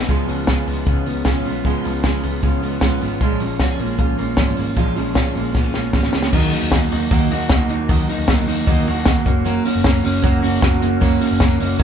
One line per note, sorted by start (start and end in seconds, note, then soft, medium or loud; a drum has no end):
0.00 0.32 B3 soft
0.00 0.13 D#4 soft
0.08 0.25 C#2 loud
0.08 0.28 C#3 medium
0.08 1.65 F3 medium
0.08 0.28 G#3 medium
0.08 0.27 B3 medium
0.08 0.26 F4 medium
0.08 0.48 G#4 medium
0.08 kick medium
0.08 closed hi-hat medium
0.27 0.52 C#2 medium
0.27 0.46 G#3 medium
0.27 0.47 B3 soft
0.27 0.87 C#4 medium
0.27 0.47 F4 medium
0.27 open hi-hat medium
0.47 0.67 C#3 medium
0.47 0.67 G#3 medium
0.47 0.66 B3 medium
0.47 0.65 F4 medium
0.47 1.66 G#4 medium
0.47 kick loud
0.47 snare loud
0.47 closed hi-hat medium
0.67 0.83 C#2 medium
0.67 0.86 G#3 soft
0.67 0.87 B3 soft
0.67 0.86 F4 medium
0.67 open hi-hat medium
0.86 1.03 C#2 medium
0.86 1.06 C#3 medium
0.86 1.06 G#3 medium
0.86 1.05 B3 medium
0.86 1.26 C#4 medium
0.86 1.04 F4 medium
0.86 kick loud
0.86 closed hi-hat medium
1.06 1.23 C#2 medium
1.06 1.25 G#3 soft
1.06 1.25 B3 soft
1.06 1.25 F4 medium
1.06 open hi-hat medium
1.25 1.42 B1 medium
1.25 1.45 C#3 medium
1.25 1.46 G#3 medium
1.25 1.45 B3 medium
1.25 1.84 C#4 medium
1.25 1.44 F4 medium
1.25 kick loud
1.25 snare loud
1.25 closed hi-hat medium
1.45 1.61 B1 medium
1.45 1.64 G#3 soft
1.45 1.64 B3 soft
1.45 1.65 F4 medium
1.45 open hi-hat medium
1.64 1.81 C#2 loud
1.64 1.84 C#3 medium
1.64 3.21 F3 medium
1.64 1.85 G#3 medium
1.64 1.84 B3 medium
1.64 1.82 F4 loud
1.64 2.04 G#4 medium
1.64 kick medium
1.64 closed hi-hat medium
1.84 2.09 C#2 loud
1.84 2.02 G#3 soft
1.84 2.03 B3 soft
1.84 2.43 C#4 medium
1.84 2.04 F4 medium
1.84 open hi-hat medium
2.03 2.23 C#3 medium
2.03 2.23 G#3 medium
2.03 2.23 B3 medium
2.03 2.22 F4 medium
2.03 3.21 G#4 medium
2.03 kick medium
2.03 snare medium
2.03 closed hi-hat medium
2.23 2.40 C#2 loud
2.23 2.42 G#3 soft
2.23 2.43 B3 medium
2.23 2.43 F4 medium
2.23 open hi-hat medium
2.42 2.59 C#2 medium
2.42 2.62 C#3 medium
2.42 2.63 G#3 medium
2.42 2.62 B3 medium
2.42 2.81 C#4 medium
2.42 2.61 F4 medium
2.42 kick loud
2.42 closed hi-hat medium
2.62 2.78 C#2 medium
2.62 2.81 G#3 soft
2.62 2.82 B3 soft
2.62 2.82 F4 medium
2.62 open hi-hat medium
2.81 2.98 B1 medium
2.81 3.01 C#3 medium
2.81 3.01 G#3 medium
2.81 3.01 B3 medium
2.81 3.40 C#4 medium
2.81 3.00 F4 medium
2.81 kick loud
2.81 snare loud
2.81 closed hi-hat medium
3.01 3.18 G#1 medium
3.01 3.21 G#3 soft
3.01 3.21 B3 medium
3.01 3.21 F4 soft
3.01 open hi-hat medium
3.21 3.37 A#1 medium
3.21 3.41 A#2 medium
3.21 3.41 F3 medium
3.21 3.41 G#3 medium
3.21 3.40 C#4 medium
3.21 3.39 F4 medium
3.21 3.59 G#4 medium
3.21 kick loud
3.21 closed hi-hat medium
3.40 3.65 A#1 loud
3.40 3.60 G#3 soft
3.40 3.60 C#4 medium
3.40 3.60 F4 medium
3.40 open hi-hat medium
3.59 3.80 A#2 medium
3.59 3.80 F3 medium
3.59 3.80 G#3 medium
3.59 3.79 C#4 medium
3.59 3.78 F4 medium
3.59 3.69 F#4 medium
3.59 kick loud
3.59 snare medium
3.59 closed hi-hat medium
3.69 4.76 G#4 soft
3.79 3.96 A#1 medium
3.79 3.98 G#3 soft
3.79 4.17 A#3 medium
3.79 3.98 C#4 soft
3.79 3.99 F4 medium
3.79 open hi-hat medium
3.98 4.15 A#1 loud
3.98 4.18 F3 medium
3.98 4.18 G#3 medium
3.98 4.17 C#4 medium
3.98 4.16 F4 medium
3.98 kick loud
3.98 closed hi-hat medium
4.17 4.35 A#1 medium
4.17 4.37 G#3 soft
4.17 4.56 A#3 medium
4.17 4.37 C#4 medium
4.17 4.38 F4 medium
4.17 open hi-hat medium
4.37 4.54 G#1 medium
4.37 4.57 A#2 medium
4.37 4.57 F3 medium
4.37 4.58 G#3 medium
4.37 4.57 C#4 medium
4.37 4.55 F4 medium
4.37 kick loud
4.37 snare loud
4.37 closed hi-hat medium
4.57 4.74 G#1 medium
4.57 4.76 G#3 soft
4.57 5.35 A#3 soft
4.57 4.76 C#4 soft
4.57 4.77 F4 medium
4.57 open hi-hat medium
4.76 4.93 A#1 loud
4.76 4.96 A#2 medium
4.76 4.96 F3 medium
4.76 4.97 G#3 medium
4.76 4.96 C#4 medium
4.76 4.94 F4 medium
4.76 5.15 G#4 medium
4.76 kick medium
4.76 closed hi-hat medium
4.96 5.21 A#1 loud
4.96 5.15 G#3 soft
4.96 5.15 C#4 medium
4.96 5.15 F4 medium
4.96 open hi-hat medium
5.15 5.35 A#2 medium
5.15 5.35 F3 medium
5.15 5.36 G#3 medium
5.15 5.35 C#4 medium
5.15 5.34 F4 medium
5.15 6.37 G#4 medium
5.15 kick loud
5.15 snare loud
5.15 closed hi-hat medium
5.35 5.52 A#1 medium
5.35 5.54 G#3 soft
5.35 5.74 A#3 medium
5.35 5.54 C#4 soft
5.35 5.55 F4 medium
5.35 open hi-hat medium
5.54 5.71 A#1 medium
5.54 5.74 F3 medium
5.54 5.75 G#3 medium
5.54 5.64 B3 medium
5.54 5.74 C#4 medium
5.54 5.72 F4 medium
5.54 kick loud
5.54 snare medium
5.64 5.93 C#4 soft
5.73 5.91 A#1 medium
5.73 5.93 G#3 soft
5.73 6.14 A#3 medium
5.73 5.93 C#4 soft
5.73 5.94 F4 soft
5.73 snare medium
5.93 6.10 G#1 medium
5.93 6.13 A#2 medium
5.93 6.13 F3 medium
5.93 6.14 G#3 medium
5.93 6.13 C#4 medium
5.93 6.11 F4 medium
5.93 kick loud
5.93 snare medium
6.03 snare medium
6.12 6.30 C#2 medium
6.12 6.33 G#3 soft
6.12 6.72 A#3 medium
6.12 6.33 C#4 soft
6.12 6.33 F4 medium
6.12 snare medium
6.23 snare medium
6.33 6.49 D#2 loud
6.33 6.53 D#3 loud
6.33 7.89 F#3 medium
6.33 6.53 A#3 medium
6.33 6.53 D#4 medium
6.33 6.51 F#4 medium
6.33 kick loud
6.33 crash loud
6.52 6.72 A#3 soft
6.52 6.72 D#4 medium
6.52 6.72 F#4 medium
6.52 hi-hat pedal medium
6.52 open hi-hat medium
6.63 6.71 D#2 medium
6.72 6.88 D#2 loud
6.72 6.92 D#3 medium
6.72 6.92 A#3 medium
6.72 6.91 D#4 medium
6.72 6.90 F#4 medium
6.72 kick loud
6.72 snare loud
6.91 7.08 D#2 loud
6.91 7.10 A#3 soft
6.91 7.11 D#4 medium
6.91 7.11 F#4 medium
6.91 hi-hat pedal medium
6.91 open hi-hat medium
7.11 7.27 D#2 loud
7.11 7.31 D#3 medium
7.11 7.31 A#3 medium
7.11 7.31 D#4 loud
7.11 7.30 F#4 loud
7.11 kick loud
7.11 hi-hat pedal medium
7.11 open hi-hat medium
7.31 7.47 D#2 loud
7.31 7.50 A#3 soft
7.31 7.51 D#4 medium
7.31 7.50 F#4 medium
7.31 hi-hat pedal medium
7.31 open hi-hat medium
7.49 7.66 D#2 medium
7.49 7.70 D#3 medium
7.49 7.70 A#3 medium
7.49 7.69 D#4 medium
7.49 7.68 F#4 medium
7.49 kick loud
7.49 snare loud
7.49 hi-hat pedal medium
7.49 open hi-hat medium
7.69 7.86 D#2 medium
7.69 7.88 A#3 medium
7.69 7.89 D#4 medium
7.69 7.89 F#4 medium
7.69 hi-hat pedal medium
7.69 open hi-hat medium
7.89 8.05 D#2 loud
7.89 8.08 D#3 medium
7.89 11.40 F#3 medium
7.89 8.09 A#3 medium
7.89 8.08 D#4 medium
7.89 8.07 F#4 medium
7.89 kick loud
7.89 hi-hat pedal medium
7.89 open hi-hat medium
8.08 8.27 A#3 medium
8.08 8.27 D#4 medium
8.08 8.28 F#4 medium
8.08 hi-hat pedal medium
8.08 open hi-hat medium
8.18 8.26 D#2 loud
8.27 8.44 D#2 loud
8.27 8.47 D#3 medium
8.27 8.47 A#3 medium
8.27 8.47 D#4 medium
8.27 8.45 F#4 medium
8.27 kick loud
8.27 snare loud
8.27 hi-hat pedal medium
8.27 open hi-hat medium
8.46 8.64 D#2 medium
8.46 8.66 A#3 medium
8.46 8.67 D#4 medium
8.46 8.67 F#4 medium
8.46 hi-hat pedal medium
8.46 open hi-hat medium
8.67 8.83 D#2 loud
8.67 8.87 D#3 loud
8.67 8.87 A#3 loud
8.67 8.86 D#4 loud
8.67 8.85 F#4 medium
8.67 kick loud
8.67 hi-hat pedal medium
8.67 open hi-hat medium
8.86 9.03 D#2 loud
8.86 9.06 A#3 medium
8.86 9.06 D#4 medium
8.86 9.06 F#4 medium
8.86 hi-hat pedal medium
8.86 open hi-hat medium
9.05 9.22 D#2 medium
9.05 9.26 D#3 medium
9.05 9.26 A#3 medium
9.05 9.26 D#4 medium
9.05 9.24 F#4 medium
9.05 kick loud
9.05 snare loud
9.05 hi-hat pedal medium
9.05 open hi-hat medium
9.25 9.58 F#1 medium
9.25 9.44 A#3 medium
9.25 9.45 C#4 medium
9.25 9.45 F#4 medium
9.25 kick loud
9.25 hi-hat pedal medium
9.25 open hi-hat medium
9.45 9.64 F#3 medium
9.45 9.65 A#3 medium
9.45 9.64 C#4 medium
9.45 9.63 F#4 loud
9.45 hi-hat pedal medium
9.45 open hi-hat medium
9.64 9.83 A#3 soft
9.64 9.84 C#4 medium
9.64 9.84 F#4 medium
9.64 hi-hat pedal medium
9.64 open hi-hat medium
9.75 9.83 F#1 loud
9.84 10.04 F#3 medium
9.84 10.04 A#3 medium
9.84 10.03 C#4 medium
9.84 10.02 F#4 medium
9.84 kick loud
9.84 snare loud
9.84 hi-hat pedal medium
9.84 open hi-hat medium
10.03 10.21 F#1 loud
10.03 10.22 A#3 soft
10.03 10.22 C#4 medium
10.03 10.23 F#4 medium
10.03 hi-hat pedal medium
10.03 open hi-hat medium
10.22 10.40 F#1 loud
10.22 10.42 F#3 loud
10.22 10.42 A#3 loud
10.22 10.41 C#4 medium
10.22 10.40 F#4 loud
10.22 kick loud
10.22 hi-hat pedal medium
10.22 open hi-hat medium
10.41 10.59 F#1 loud
10.41 10.61 A#3 soft
10.41 10.61 C#4 soft
10.41 10.62 F#4 medium
10.41 hi-hat pedal medium
10.41 open hi-hat medium
10.61 10.79 F#1 medium
10.61 10.81 F#3 medium
10.61 10.82 A#3 medium
10.61 10.81 C#4 medium
10.61 10.80 F#4 medium
10.61 kick loud
10.61 snare loud
10.81 10.98 F#1 medium
10.81 11.00 A#3 medium
10.81 11.00 C#4 medium
10.81 11.01 F#4 medium
10.81 hi-hat pedal medium
10.81 open hi-hat medium
11.00 11.18 F#1 loud
11.00 11.21 F#3 medium
11.00 11.21 A#3 medium
11.00 11.20 C#4 loud
11.00 11.19 F#4 medium
11.00 kick loud
11.00 hi-hat pedal medium
11.00 open hi-hat medium
11.20 11.40 A#3 soft
11.20 11.40 C#4 medium
11.20 11.40 F#4 medium
11.20 hi-hat pedal medium
11.20 open hi-hat medium
11.31 11.39 F#1 loud
11.40 11.57 F#1 medium
11.40 11.60 F#3 medium
11.40 11.60 A#3 medium
11.40 11.59 C#4 medium
11.40 11.58 F#4 medium
11.40 kick loud
11.40 snare loud
11.40 hi-hat pedal medium
11.40 open hi-hat medium
11.59 11.77 F#1 medium
11.59 11.78 A#3 medium
11.59 11.78 C#4 medium
11.59 11.79 F#4 medium
11.59 hi-hat pedal medium
11.59 open hi-hat medium
11.79 11.83 F#3 loud
11.79 11.83 A#3 medium
11.79 11.83 C#4 loud
11.79 kick loud
11.79 hi-hat pedal medium
11.79 open hi-hat medium